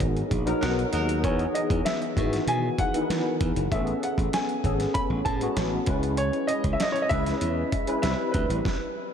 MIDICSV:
0, 0, Header, 1, 6, 480
1, 0, Start_track
1, 0, Tempo, 617920
1, 961, Time_signature, 4, 2, 24, 8
1, 7096, End_track
2, 0, Start_track
2, 0, Title_t, "Grand piano"
2, 0, Program_c, 0, 0
2, 0, Note_on_c, 0, 75, 72
2, 684, Note_off_c, 0, 75, 0
2, 968, Note_on_c, 0, 73, 73
2, 1188, Note_off_c, 0, 73, 0
2, 1200, Note_on_c, 0, 75, 72
2, 1439, Note_on_c, 0, 76, 79
2, 1448, Note_off_c, 0, 75, 0
2, 1928, Note_on_c, 0, 80, 98
2, 1935, Note_off_c, 0, 76, 0
2, 2170, Note_on_c, 0, 78, 86
2, 2172, Note_off_c, 0, 80, 0
2, 2615, Note_off_c, 0, 78, 0
2, 2888, Note_on_c, 0, 76, 81
2, 3132, Note_off_c, 0, 76, 0
2, 3134, Note_on_c, 0, 78, 71
2, 3186, Note_off_c, 0, 78, 0
2, 3369, Note_on_c, 0, 80, 84
2, 3839, Note_on_c, 0, 83, 93
2, 3860, Note_off_c, 0, 80, 0
2, 3893, Note_off_c, 0, 83, 0
2, 4078, Note_on_c, 0, 81, 84
2, 4529, Note_off_c, 0, 81, 0
2, 4800, Note_on_c, 0, 73, 87
2, 5029, Note_on_c, 0, 75, 88
2, 5048, Note_off_c, 0, 73, 0
2, 5227, Note_on_c, 0, 76, 80
2, 5239, Note_off_c, 0, 75, 0
2, 5301, Note_on_c, 0, 75, 79
2, 5304, Note_off_c, 0, 76, 0
2, 5376, Note_off_c, 0, 75, 0
2, 5377, Note_on_c, 0, 73, 82
2, 5449, Note_off_c, 0, 73, 0
2, 5454, Note_on_c, 0, 75, 81
2, 5511, Note_on_c, 0, 76, 112
2, 5523, Note_off_c, 0, 75, 0
2, 6205, Note_off_c, 0, 76, 0
2, 6231, Note_on_c, 0, 76, 93
2, 6460, Note_on_c, 0, 71, 81
2, 6484, Note_off_c, 0, 76, 0
2, 7096, Note_off_c, 0, 71, 0
2, 7096, End_track
3, 0, Start_track
3, 0, Title_t, "Horn section"
3, 0, Program_c, 1, 61
3, 477, Note_on_c, 1, 70, 91
3, 478, Note_on_c, 1, 66, 86
3, 484, Note_on_c, 1, 63, 82
3, 555, Note_off_c, 1, 66, 0
3, 555, Note_off_c, 1, 70, 0
3, 559, Note_off_c, 1, 63, 0
3, 717, Note_on_c, 1, 63, 87
3, 717, Note_on_c, 1, 70, 91
3, 718, Note_on_c, 1, 66, 86
3, 871, Note_off_c, 1, 63, 0
3, 871, Note_off_c, 1, 70, 0
3, 872, Note_off_c, 1, 66, 0
3, 7096, End_track
4, 0, Start_track
4, 0, Title_t, "Tine electric piano"
4, 0, Program_c, 2, 4
4, 0, Control_c, 2, 64, 127
4, 0, Note_on_c, 2, 54, 59
4, 0, Note_on_c, 2, 59, 57
4, 0, Note_on_c, 2, 63, 57
4, 0, Note_on_c, 2, 68, 72
4, 0, Note_on_c, 2, 70, 78
4, 320, Note_off_c, 2, 54, 0
4, 323, Note_off_c, 2, 59, 0
4, 324, Note_off_c, 2, 63, 0
4, 326, Note_off_c, 2, 68, 0
4, 352, Note_on_c, 2, 54, 79
4, 357, Note_on_c, 2, 59, 77
4, 358, Note_on_c, 2, 63, 80
4, 363, Note_off_c, 2, 70, 0
4, 363, Note_on_c, 2, 70, 89
4, 920, Note_off_c, 2, 54, 0
4, 923, Note_off_c, 2, 59, 0
4, 923, Note_off_c, 2, 63, 0
4, 925, Note_off_c, 2, 70, 0
4, 956, Note_on_c, 2, 52, 63
4, 959, Note_on_c, 2, 59, 65
4, 962, Note_on_c, 2, 63, 57
4, 967, Note_on_c, 2, 68, 77
4, 972, Control_c, 2, 64, 0
4, 1117, Control_c, 2, 64, 127
4, 1634, Note_off_c, 2, 52, 0
4, 1636, Note_off_c, 2, 59, 0
4, 1638, Note_off_c, 2, 63, 0
4, 1640, Note_off_c, 2, 68, 0
4, 1679, Note_on_c, 2, 52, 61
4, 1679, Note_on_c, 2, 59, 57
4, 1686, Note_on_c, 2, 51, 59
4, 1689, Note_on_c, 2, 66, 68
4, 2243, Note_off_c, 2, 52, 0
4, 2244, Note_off_c, 2, 59, 0
4, 2247, Note_off_c, 2, 51, 0
4, 2248, Note_off_c, 2, 66, 0
4, 2281, Note_on_c, 2, 52, 67
4, 2284, Note_on_c, 2, 59, 57
4, 2285, Note_on_c, 2, 63, 59
4, 2288, Note_on_c, 2, 70, 54
4, 2335, Note_off_c, 2, 70, 0
4, 2339, Note_on_c, 2, 71, 70
4, 2845, Note_off_c, 2, 52, 0
4, 2846, Note_off_c, 2, 59, 0
4, 2847, Note_off_c, 2, 63, 0
4, 2874, Note_off_c, 2, 71, 0
4, 2884, Note_on_c, 2, 68, 79
4, 2887, Note_on_c, 2, 59, 67
4, 2891, Control_c, 2, 64, 0
4, 2891, Note_on_c, 2, 61, 66
4, 2896, Note_on_c, 2, 69, 81
4, 3023, Control_c, 2, 64, 127
4, 3559, Note_off_c, 2, 68, 0
4, 3560, Note_off_c, 2, 59, 0
4, 3562, Note_off_c, 2, 61, 0
4, 3565, Note_off_c, 2, 69, 0
4, 3607, Note_on_c, 2, 68, 60
4, 3608, Note_on_c, 2, 59, 57
4, 3614, Note_on_c, 2, 61, 61
4, 3616, Note_on_c, 2, 69, 65
4, 4168, Note_off_c, 2, 59, 0
4, 4168, Note_off_c, 2, 68, 0
4, 4171, Note_off_c, 2, 61, 0
4, 4172, Note_off_c, 2, 69, 0
4, 4201, Note_on_c, 2, 56, 69
4, 4207, Note_on_c, 2, 59, 68
4, 4212, Note_on_c, 2, 61, 61
4, 4213, Note_on_c, 2, 66, 76
4, 4548, Note_off_c, 2, 56, 0
4, 4551, Note_off_c, 2, 61, 0
4, 4557, Note_on_c, 2, 56, 69
4, 4560, Note_on_c, 2, 61, 59
4, 4563, Note_on_c, 2, 64, 66
4, 4565, Note_off_c, 2, 59, 0
4, 4568, Note_off_c, 2, 66, 0
4, 4569, Note_on_c, 2, 71, 73
4, 4572, Control_c, 2, 64, 0
4, 4730, Control_c, 2, 64, 127
4, 5461, Note_off_c, 2, 56, 0
4, 5462, Note_off_c, 2, 61, 0
4, 5464, Note_off_c, 2, 64, 0
4, 5466, Note_off_c, 2, 71, 0
4, 5521, Note_on_c, 2, 56, 65
4, 5525, Note_on_c, 2, 61, 58
4, 5525, Note_on_c, 2, 64, 58
4, 5531, Note_on_c, 2, 71, 75
4, 6085, Note_off_c, 2, 56, 0
4, 6086, Note_off_c, 2, 61, 0
4, 6087, Note_off_c, 2, 64, 0
4, 6089, Note_off_c, 2, 71, 0
4, 6113, Note_on_c, 2, 56, 65
4, 6117, Note_on_c, 2, 61, 60
4, 6120, Note_on_c, 2, 64, 61
4, 6124, Note_on_c, 2, 71, 71
4, 6229, Note_off_c, 2, 64, 0
4, 6234, Note_off_c, 2, 71, 0
4, 6235, Note_on_c, 2, 55, 75
4, 6236, Note_on_c, 2, 60, 69
4, 6238, Note_off_c, 2, 56, 0
4, 6238, Note_on_c, 2, 64, 67
4, 6239, Note_off_c, 2, 61, 0
4, 6243, Note_on_c, 2, 71, 77
4, 6251, Control_c, 2, 64, 0
4, 6368, Control_c, 2, 64, 127
4, 6689, Note_off_c, 2, 55, 0
4, 6689, Note_off_c, 2, 60, 0
4, 6690, Note_off_c, 2, 64, 0
4, 6693, Note_off_c, 2, 71, 0
4, 6733, Control_c, 2, 64, 0
4, 7096, End_track
5, 0, Start_track
5, 0, Title_t, "Slap bass"
5, 0, Program_c, 3, 36
5, 6, Note_on_c, 3, 32, 76
5, 169, Note_off_c, 3, 32, 0
5, 243, Note_on_c, 3, 34, 76
5, 407, Note_off_c, 3, 34, 0
5, 487, Note_on_c, 3, 35, 75
5, 649, Note_off_c, 3, 35, 0
5, 724, Note_on_c, 3, 39, 74
5, 963, Note_off_c, 3, 39, 0
5, 963, Note_on_c, 3, 40, 96
5, 1127, Note_off_c, 3, 40, 0
5, 1322, Note_on_c, 3, 40, 81
5, 1404, Note_off_c, 3, 40, 0
5, 1687, Note_on_c, 3, 44, 79
5, 1850, Note_off_c, 3, 44, 0
5, 1921, Note_on_c, 3, 47, 79
5, 2086, Note_off_c, 3, 47, 0
5, 2408, Note_on_c, 3, 52, 82
5, 2488, Note_off_c, 3, 52, 0
5, 2648, Note_on_c, 3, 40, 73
5, 2728, Note_off_c, 3, 40, 0
5, 2769, Note_on_c, 3, 30, 83
5, 2849, Note_off_c, 3, 30, 0
5, 2886, Note_on_c, 3, 33, 89
5, 3049, Note_off_c, 3, 33, 0
5, 3245, Note_on_c, 3, 33, 80
5, 3326, Note_off_c, 3, 33, 0
5, 3607, Note_on_c, 3, 32, 73
5, 3770, Note_off_c, 3, 32, 0
5, 3960, Note_on_c, 3, 33, 85
5, 4043, Note_off_c, 3, 33, 0
5, 4085, Note_on_c, 3, 45, 85
5, 4248, Note_off_c, 3, 45, 0
5, 4325, Note_on_c, 3, 33, 86
5, 4488, Note_off_c, 3, 33, 0
5, 4563, Note_on_c, 3, 37, 82
5, 4891, Note_off_c, 3, 37, 0
5, 5160, Note_on_c, 3, 37, 77
5, 5243, Note_off_c, 3, 37, 0
5, 5524, Note_on_c, 3, 37, 78
5, 5687, Note_off_c, 3, 37, 0
5, 5759, Note_on_c, 3, 40, 89
5, 5925, Note_off_c, 3, 40, 0
5, 6242, Note_on_c, 3, 36, 86
5, 6324, Note_off_c, 3, 36, 0
5, 6483, Note_on_c, 3, 38, 84
5, 6565, Note_off_c, 3, 38, 0
5, 6598, Note_on_c, 3, 33, 74
5, 6681, Note_off_c, 3, 33, 0
5, 7096, End_track
6, 0, Start_track
6, 0, Title_t, "Drums"
6, 2, Note_on_c, 9, 36, 97
6, 3, Note_on_c, 9, 42, 74
6, 80, Note_off_c, 9, 36, 0
6, 81, Note_off_c, 9, 42, 0
6, 128, Note_on_c, 9, 42, 33
6, 206, Note_off_c, 9, 42, 0
6, 242, Note_on_c, 9, 36, 86
6, 243, Note_on_c, 9, 42, 69
6, 320, Note_off_c, 9, 36, 0
6, 321, Note_off_c, 9, 42, 0
6, 364, Note_on_c, 9, 42, 52
6, 442, Note_off_c, 9, 42, 0
6, 486, Note_on_c, 9, 42, 86
6, 488, Note_on_c, 9, 38, 95
6, 564, Note_off_c, 9, 42, 0
6, 566, Note_off_c, 9, 38, 0
6, 614, Note_on_c, 9, 42, 31
6, 691, Note_off_c, 9, 42, 0
6, 719, Note_on_c, 9, 42, 67
6, 797, Note_off_c, 9, 42, 0
6, 846, Note_on_c, 9, 42, 51
6, 924, Note_off_c, 9, 42, 0
6, 962, Note_on_c, 9, 36, 100
6, 965, Note_on_c, 9, 42, 73
6, 1040, Note_off_c, 9, 36, 0
6, 1043, Note_off_c, 9, 42, 0
6, 1082, Note_on_c, 9, 42, 31
6, 1160, Note_off_c, 9, 42, 0
6, 1206, Note_on_c, 9, 42, 68
6, 1284, Note_off_c, 9, 42, 0
6, 1322, Note_on_c, 9, 36, 86
6, 1326, Note_on_c, 9, 42, 51
6, 1400, Note_off_c, 9, 36, 0
6, 1404, Note_off_c, 9, 42, 0
6, 1444, Note_on_c, 9, 42, 84
6, 1448, Note_on_c, 9, 38, 113
6, 1521, Note_off_c, 9, 42, 0
6, 1526, Note_off_c, 9, 38, 0
6, 1567, Note_on_c, 9, 42, 34
6, 1644, Note_off_c, 9, 42, 0
6, 1684, Note_on_c, 9, 36, 78
6, 1690, Note_on_c, 9, 42, 64
6, 1762, Note_off_c, 9, 36, 0
6, 1767, Note_off_c, 9, 42, 0
6, 1809, Note_on_c, 9, 42, 50
6, 1817, Note_on_c, 9, 38, 34
6, 1887, Note_off_c, 9, 42, 0
6, 1895, Note_off_c, 9, 38, 0
6, 1923, Note_on_c, 9, 42, 74
6, 2001, Note_off_c, 9, 42, 0
6, 2163, Note_on_c, 9, 36, 87
6, 2164, Note_on_c, 9, 42, 68
6, 2241, Note_off_c, 9, 36, 0
6, 2241, Note_off_c, 9, 42, 0
6, 2286, Note_on_c, 9, 42, 55
6, 2364, Note_off_c, 9, 42, 0
6, 2411, Note_on_c, 9, 42, 78
6, 2413, Note_on_c, 9, 38, 96
6, 2489, Note_off_c, 9, 42, 0
6, 2490, Note_off_c, 9, 38, 0
6, 2646, Note_on_c, 9, 42, 66
6, 2647, Note_on_c, 9, 36, 85
6, 2724, Note_off_c, 9, 42, 0
6, 2725, Note_off_c, 9, 36, 0
6, 2769, Note_on_c, 9, 42, 52
6, 2846, Note_off_c, 9, 42, 0
6, 2887, Note_on_c, 9, 36, 103
6, 2891, Note_on_c, 9, 42, 74
6, 2965, Note_off_c, 9, 36, 0
6, 2968, Note_off_c, 9, 42, 0
6, 3006, Note_on_c, 9, 42, 31
6, 3084, Note_off_c, 9, 42, 0
6, 3132, Note_on_c, 9, 42, 71
6, 3209, Note_off_c, 9, 42, 0
6, 3246, Note_on_c, 9, 36, 77
6, 3255, Note_on_c, 9, 42, 51
6, 3324, Note_off_c, 9, 36, 0
6, 3332, Note_off_c, 9, 42, 0
6, 3366, Note_on_c, 9, 42, 84
6, 3370, Note_on_c, 9, 38, 101
6, 3443, Note_off_c, 9, 42, 0
6, 3448, Note_off_c, 9, 38, 0
6, 3487, Note_on_c, 9, 42, 34
6, 3565, Note_off_c, 9, 42, 0
6, 3605, Note_on_c, 9, 36, 76
6, 3608, Note_on_c, 9, 42, 57
6, 3683, Note_off_c, 9, 36, 0
6, 3686, Note_off_c, 9, 42, 0
6, 3727, Note_on_c, 9, 42, 50
6, 3735, Note_on_c, 9, 38, 36
6, 3805, Note_off_c, 9, 42, 0
6, 3813, Note_off_c, 9, 38, 0
6, 3843, Note_on_c, 9, 42, 75
6, 3845, Note_on_c, 9, 36, 93
6, 3921, Note_off_c, 9, 42, 0
6, 3923, Note_off_c, 9, 36, 0
6, 4083, Note_on_c, 9, 42, 69
6, 4084, Note_on_c, 9, 36, 80
6, 4161, Note_off_c, 9, 42, 0
6, 4162, Note_off_c, 9, 36, 0
6, 4203, Note_on_c, 9, 42, 53
6, 4281, Note_off_c, 9, 42, 0
6, 4324, Note_on_c, 9, 42, 77
6, 4325, Note_on_c, 9, 38, 98
6, 4402, Note_off_c, 9, 42, 0
6, 4403, Note_off_c, 9, 38, 0
6, 4555, Note_on_c, 9, 42, 67
6, 4562, Note_on_c, 9, 36, 94
6, 4633, Note_off_c, 9, 42, 0
6, 4640, Note_off_c, 9, 36, 0
6, 4684, Note_on_c, 9, 42, 47
6, 4762, Note_off_c, 9, 42, 0
6, 4796, Note_on_c, 9, 42, 72
6, 4873, Note_off_c, 9, 42, 0
6, 4919, Note_on_c, 9, 42, 29
6, 4997, Note_off_c, 9, 42, 0
6, 5038, Note_on_c, 9, 42, 70
6, 5115, Note_off_c, 9, 42, 0
6, 5159, Note_on_c, 9, 42, 57
6, 5160, Note_on_c, 9, 36, 79
6, 5236, Note_off_c, 9, 42, 0
6, 5238, Note_off_c, 9, 36, 0
6, 5281, Note_on_c, 9, 42, 88
6, 5286, Note_on_c, 9, 38, 115
6, 5359, Note_off_c, 9, 42, 0
6, 5363, Note_off_c, 9, 38, 0
6, 5404, Note_on_c, 9, 42, 35
6, 5481, Note_off_c, 9, 42, 0
6, 5521, Note_on_c, 9, 42, 60
6, 5523, Note_on_c, 9, 36, 81
6, 5598, Note_off_c, 9, 42, 0
6, 5600, Note_off_c, 9, 36, 0
6, 5643, Note_on_c, 9, 42, 51
6, 5651, Note_on_c, 9, 38, 36
6, 5721, Note_off_c, 9, 42, 0
6, 5728, Note_off_c, 9, 38, 0
6, 5757, Note_on_c, 9, 42, 78
6, 5835, Note_off_c, 9, 42, 0
6, 6000, Note_on_c, 9, 36, 89
6, 6000, Note_on_c, 9, 42, 69
6, 6078, Note_off_c, 9, 36, 0
6, 6078, Note_off_c, 9, 42, 0
6, 6117, Note_on_c, 9, 42, 59
6, 6194, Note_off_c, 9, 42, 0
6, 6237, Note_on_c, 9, 42, 80
6, 6239, Note_on_c, 9, 38, 95
6, 6315, Note_off_c, 9, 42, 0
6, 6316, Note_off_c, 9, 38, 0
6, 6478, Note_on_c, 9, 42, 67
6, 6483, Note_on_c, 9, 36, 84
6, 6556, Note_off_c, 9, 42, 0
6, 6560, Note_off_c, 9, 36, 0
6, 6605, Note_on_c, 9, 42, 54
6, 6683, Note_off_c, 9, 42, 0
6, 6721, Note_on_c, 9, 36, 94
6, 6729, Note_on_c, 9, 38, 83
6, 6799, Note_off_c, 9, 36, 0
6, 6807, Note_off_c, 9, 38, 0
6, 7096, End_track
0, 0, End_of_file